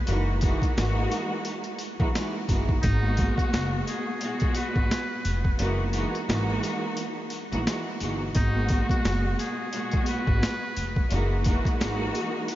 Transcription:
0.07 upright bass F#1, string section E3 G#3 A#3 D#4 F#4, closed hi-hat, sleigh bells
0.41 string section E3 G#3 A#3 D#4 F#4, kick, closed hi-hat, sleigh bells
0.62 kick, closed hi-hat
0.76 upright bass G#1, string section E3 G#3 A#3 D#4 F#4, snare, closed hi-hat, sleigh bells
1.11 closed hi-hat, sleigh bells
1.45 closed hi-hat, sleigh bells
1.64 closed hi-hat
1.79 closed hi-hat, sleigh bells
2.00 upright bass A#1, string section E3 G#3 A#3 D#4 F#4, kick
2.14 string section E3 G#3 A#3 D#4 F#4, snare, closed hi-hat, sleigh bells
2.48 upright bass G1, string section E3 G#3 A#3 D#4 F#4, kick, closed hi-hat, sleigh bells
2.69 kick
2.82 upright bass G#1, string section B2 G#3 A#3 F#4, muted trumpet D#4, kick, closed hi-hat, sleigh bells
3.17 kick, closed hi-hat, sleigh bells
3.37 muted trumpet F#4, kick, closed hi-hat
3.53 upright bass F#1, snare, closed hi-hat, sleigh bells
3.87 muted trumpet G#4, closed hi-hat, sleigh bells
4.20 string section A#2 B2 G#3 F#4, closed hi-hat, sleigh bells
4.40 kick, closed hi-hat
4.55 muted trumpet B4, closed hi-hat, sleigh bells
4.76 upright bass G#1, kick
4.91 snare, closed hi-hat, sleigh bells
5.25 upright bass F1, closed hi-hat, sleigh bells
5.45 kick
5.59 upright bass F#1, string section E3 G#3 A#3 D#4 F#4, closed hi-hat, sleigh bells
5.92 string section E3 G#3 A#3 D#4 F#4, closed hi-hat, sleigh bells
6.15 closed hi-hat
6.27 upright bass G#1, string section E3 G#3 A#3 D#4 F#4, snare, closed hi-hat, sleigh bells
6.63 closed hi-hat, sleigh bells
6.97 closed hi-hat, sleigh bells
7.30 closed hi-hat, sleigh bells
7.51 upright bass A#1, string section E3 G#3 A#3 D#4 F#4, closed hi-hat
7.66 string section E3 G#3 A#3 D#4 F#4, snare, closed hi-hat, sleigh bells
8.00 upright bass G1, string section E3 G#3 A#3 D#4 F#4, closed hi-hat, sleigh bells
8.35 upright bass G#1, string section B2 G#3 A#3 F#4, muted trumpet D#4, kick, closed hi-hat, sleigh bells
8.69 kick, closed hi-hat, sleigh bells
8.89 muted trumpet F#4, kick, closed hi-hat
9.05 upright bass F#1, snare, closed hi-hat, sleigh bells
9.39 muted trumpet G#4, closed hi-hat, sleigh bells
9.72 string section A#2 B2 G#3 F#4, closed hi-hat, sleigh bells
9.91 kick, closed hi-hat
10.06 muted trumpet B4, closed hi-hat, sleigh bells
10.27 upright bass G#1, kick
10.43 snare, closed hi-hat, sleigh bells
10.77 upright bass F1, closed hi-hat, sleigh bells
10.96 kick
11.10 upright bass F#1, string section E3 G#3 A#3 D#4 F#4, closed hi-hat, sleigh bells
11.44 string section E3 G#3 A#3 D#4 F#4, kick, closed hi-hat, sleigh bells
11.65 kick, closed hi-hat
11.79 upright bass G#1, string section E3 G#3 A#3 D#4 F#4, snare, closed hi-hat, sleigh bells
12.15 closed hi-hat, sleigh bells
12.48 closed hi-hat, sleigh bells

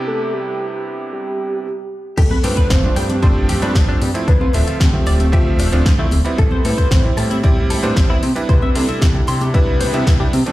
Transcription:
Already playing: electric grand piano C3 B3 D4 E4 G4
0.07 soft synth lead A4
0.34 soft synth lead G4
1.12 soft synth lead G4
2.17 analog synth bass G1, clean electric guitar G4, soft synth lead A4, kick, closed hi-hat, crash, tambourine
2.31 clean electric guitar B4, high conga, low conga
2.43 analog synth bass G2, electric grand piano F3 A3 C4 D4, clean electric guitar G4, soft synth lead B4, open hi-hat, tambourine, muted conga
2.57 clean electric guitar B4, kick, closed hi-hat, tambourine
2.70 analog synth bass G1, soft synth lead C5, kick, snare, closed hi-hat, tambourine, high conga
2.83 electric grand piano F3 A3 C4 D4, low conga
2.96 analog synth bass G2, soft synth lead G4, clean electric guitar G5, open hi-hat, tambourine
3.09 clean electric guitar D4, closed hi-hat, tambourine, high conga
3.22 analog synth bass G1, electric grand piano F3 A3 C4 D4, clean electric guitar C5, kick, closed hi-hat, tambourine
3.49 analog synth bass G2, clean electric guitar G4, open hi-hat, tambourine
3.62 analog synth bass G2, electric grand piano F3 A3 C4 D4, clean electric guitar B4, closed hi-hat, tambourine, high conga
3.75 analog synth bass G1, kick, snare, closed hi-hat, tambourine
3.88 electric grand piano F3 A3 C4 D4, clean electric guitar D4
4.01 analog synth bass G2, clean electric guitar G3, open hi-hat, tambourine, muted conga, high conga
4.14 electric grand piano F3 A3 C4 E4, closed hi-hat, tambourine
4.28 analog synth bass D2, clean electric guitar D4, soft synth lead B4, kick, closed hi-hat, tambourine
4.41 clean electric guitar F4, high conga, low conga
4.53 analog synth bass D1, electric grand piano F3 A3 C4 E5, clean electric guitar D4, soft synth lead A4, open hi-hat, tambourine, muted conga
4.67 analog synth bass D2, clean electric guitar F4, closed hi-hat, tambourine
4.80 analog synth bass D2, soft synth lead G4, kick, snare, closed hi-hat, tambourine, high conga
4.93 electric grand piano F3 A3 C4 E5, low conga
5.06 analog synth bass D1, clean electric guitar D5, open hi-hat, tambourine
5.19 clean electric guitar A3, closed hi-hat, tambourine, high conga
5.32 analog synth bass D2, electric grand piano F3 A3 C4 E5, soft synth lead F4, clean electric guitar G4, kick, closed hi-hat, tambourine
5.46 muted conga
5.59 analog synth bass D1, clean electric guitar D4, open hi-hat, tambourine, muted conga
5.72 analog synth bass D1, electric grand piano F3 A3 C4 D4, clean electric guitar F4, closed hi-hat, tambourine, high conga
5.86 analog synth bass D2, kick, snare, closed hi-hat
5.98 electric grand piano F3 A3 C4 E4, clean electric guitar A3
6.11 analog synth bass D1, clean electric guitar D3, open hi-hat, tambourine, muted conga, high conga
6.25 electric grand piano G3 B3 C4 E4, closed hi-hat, tambourine
6.38 analog synth bass A1, soft synth lead A4, clean electric guitar A4, kick, closed hi-hat, tambourine
6.51 clean electric guitar C5, high conga, low conga
6.64 analog synth bass A2, electric grand piano G3 C4 E4, clean electric guitar A4, soft synth lead B4, open hi-hat, tambourine, muted conga
6.77 clean electric guitar C5, kick, closed hi-hat, tambourine
6.91 analog synth bass A1, soft synth lead C5, kick, snare, closed hi-hat, tambourine, high conga
7.04 electric grand piano G3 C4 E4, low conga
7.17 analog synth bass A2, soft synth lead G4, clean electric guitar A5, open hi-hat, tambourine
7.30 clean electric guitar E4, closed hi-hat, tambourine, high conga
7.43 analog synth bass A1, electric grand piano G3 C4 E4, clean electric guitar D5, kick, closed hi-hat, tambourine
7.70 analog synth bass A2, clean electric guitar A4, open hi-hat, tambourine
7.83 analog synth bass A2, electric grand piano G3 B3 C4 D4, clean electric guitar C5, closed hi-hat, tambourine, high conga
7.96 analog synth bass A1, kick, snare, closed hi-hat, tambourine
8.09 electric grand piano G3 B3 C4 E4, clean electric guitar E4
8.22 analog synth bass C3, clean electric guitar C4, open hi-hat, tambourine, muted conga, high conga
8.35 electric grand piano G3 D4 E4 B4, closed hi-hat, tambourine
8.49 analog synth bass C2, soft synth lead B4, clean electric guitar C5, kick, closed hi-hat, tambourine
8.62 clean electric guitar E5, high conga, low conga
8.75 analog synth bass C3, electric grand piano G3 D4 E4, soft synth lead A4, clean electric guitar C5, open hi-hat, tambourine, muted conga
8.89 analog synth bass C2, clean electric guitar E5, closed hi-hat, tambourine
9.01 analog synth bass C2, soft synth lead G4, kick, snare, closed hi-hat, tambourine, high conga
9.14 electric grand piano G3 D4 E4, low conga
9.27 analog synth bass C3, clean electric guitar C6, open hi-hat, tambourine
9.41 clean electric guitar G4, closed hi-hat, tambourine, high conga
9.54 analog synth bass C2, electric grand piano G3 B3 D4 E4, soft synth lead B4, clean electric guitar E5, kick, closed hi-hat, tambourine
9.67 muted conga
9.80 analog synth bass C3, clean electric guitar C5, open hi-hat, tambourine, muted conga
9.93 analog synth bass C3, electric grand piano G3 B3 D4 E4, clean electric guitar E5, closed hi-hat, tambourine, high conga
10.07 analog synth bass C2, kick, snare, closed hi-hat, tambourine
10.20 electric grand piano G3 B3 D4 E4, clean electric guitar G4
10.33 analog synth bass C3, clean electric guitar C4, open hi-hat, tambourine, muted conga, high conga
10.46 electric grand piano F3 A3 C4 D4, closed hi-hat, tambourine

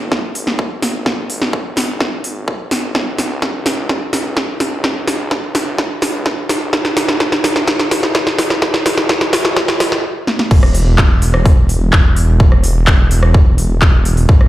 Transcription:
Already playing: detuned saw bass G#1
0.12 kick, snare
0.35 open hi-hat
0.47 snare
0.59 kick
0.82 snare, open hi-hat
1.06 kick, snare
1.30 open hi-hat
1.42 snare
1.53 kick
1.77 snare, open hi-hat
2.00 kick, snare
2.24 open hi-hat
2.48 kick
2.71 snare, open hi-hat
2.95 detuned saw bass C#2, kick, snare
3.19 snare, open hi-hat
3.42 kick, snare
3.66 snare, open hi-hat
3.89 kick, snare
4.13 snare, open hi-hat
4.37 kick, snare
4.60 snare, open hi-hat
4.84 kick, snare
5.08 snare, open hi-hat
5.31 kick, snare
5.55 snare, open hi-hat
5.78 kick, snare
6.02 snare, open hi-hat
6.26 kick, snare
6.49 snare, open hi-hat
6.73 detuned saw bass A1, kick, snare
6.85 snare
6.97 snare, open hi-hat
7.08 snare
7.20 kick, snare
7.32 snare
7.44 snare, open hi-hat
7.56 snare
7.67 kick, snare
7.79 snare
7.91 snare, open hi-hat
8.03 snare
8.15 kick, snare
8.27 snare
8.39 snare, open hi-hat
8.50 snare
8.62 kick, snare
8.74 snare
8.86 snare, open hi-hat
8.98 snare
9.09 kick, snare
9.21 snare
9.33 snare, open hi-hat
9.45 snare
9.56 kick, snare
9.68 snare
9.80 snare, open hi-hat
9.92 snare
10.27 snare
10.39 snare
10.51 detuned saw bass E1, kick, crash
10.63 cross-stick
10.75 open hi-hat
10.98 kick, clap
11.22 open hi-hat
11.34 cross-stick
11.46 kick, open hi-hat
11.69 open hi-hat
11.93 kick, clap
12.16 open hi-hat
12.40 kick
12.52 cross-stick
12.64 open hi-hat
12.87 kick, clap
13.11 open hi-hat
13.23 cross-stick
13.34 kick
13.58 open hi-hat
13.82 kick, clap
14.05 open hi-hat
14.17 open hi-hat
14.29 detuned saw bass G#1, kick
14.41 cross-stick

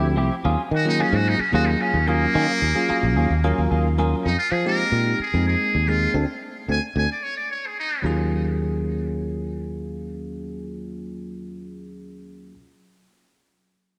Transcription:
Already playing: fretless electric bass D2, tine electric piano F3 A3 C4 E4 G4, muted trumpet E4
0.16 fretless electric bass C2, clean electric guitar F3 C4 E4 G4
0.44 fretless electric bass D#2, clean electric guitar F#3 C#4 F4 G#4
0.71 fretless electric bass D#3, muted trumpet F#4
0.85 tine electric piano F#3 A#3 C#4 F4 G#4, muted trumpet D#4
0.99 clean electric guitar F#3 C#4 F4 G#4, muted trumpet C#4
1.13 fretless electric bass G#2, muted trumpet F#4
1.29 muted trumpet D#4
1.39 muted trumpet C#4, muted fretless electric bass stroke
1.52 fretless electric bass D#2, tine electric piano F#3 A#3 C#4 F4 G#4, clean electric guitar F#3 C#4 F4 G#4, muted trumpet F#4
1.67 muted trumpet D#4
1.81 muted trumpet C#4, clean electric guitar C#4 F4 G#4
1.94 fretless electric bass D#2
2.07 tine electric piano F#3 A#3 C#4 F4 A#4, clean electric guitar F#3 C#4 F4 G#4, muted trumpet A#3
2.34 fretless electric bass D#3, clean electric guitar F#3 C#4 F4 G#4
2.62 fretless electric bass D#2
2.75 tine electric piano F#3 A#3 C#4 F4 G#4
2.89 clean electric guitar F#3 C#4 F4 G#4, muted fretless electric bass stroke
3.03 fretless electric bass A#1
3.16 fretless electric bass D#2, clean electric guitar C#4 F4 G#4
3.30 fretless electric bass D#2
3.44 tine electric piano F#3 A#3 C#4 F4 A#4, clean electric guitar F#3 C#4 F4 G#4
3.58 fretless electric bass D#2
3.71 fretless electric bass D#2, clean electric guitar C#4 F4 G#4
3.98 tine electric piano F#3 A#3 C#4 F4 A#4, clean electric guitar F#3 C#4 F4 G#4
4.25 fretless electric bass F2, muted trumpet D#4
4.39 muted trumpet F4
4.52 fretless electric bass F3, muted trumpet G#4
4.65 tine electric piano G#3 A#3 C4 D#4 G4, muted trumpet A#4
4.92 fretless electric bass A#2
5.20 muted trumpet G#4, muted fretless electric bass stroke
5.34 fretless electric bass F2, tine electric piano G#3 A#3 C4 D#4 G#4
5.48 muted trumpet G#4
5.75 fretless electric bass D#2
5.88 tine electric piano G#3 A#3 C4 D#4 G#4, muted trumpet F4
6.14 fretless electric bass D2, tine electric piano A3 C4 D4
6.68 fretless electric bass D2, tine electric piano A3 C4 D4, muted trumpet G#5
6.96 fretless electric bass D2, tine electric piano A3 C4 D4, muted trumpet G#5
7.12 muted trumpet D5
7.23 muted trumpet C#5
7.37 muted trumpet D5
7.51 muted trumpet C#5
7.67 muted trumpet G#4
7.80 muted trumpet D#4
8.02 fretless electric bass D#2, tine electric piano F#3 A#3 C#4 F4
8.06 tine electric piano G#4

